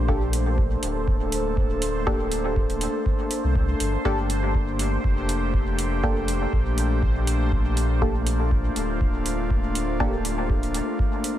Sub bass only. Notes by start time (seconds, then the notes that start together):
Already playing: A#1
0.83 D1
3.44 C2
3.80 G1
4.05 G1
5.04 F1
6.53 A#1
8.76 D1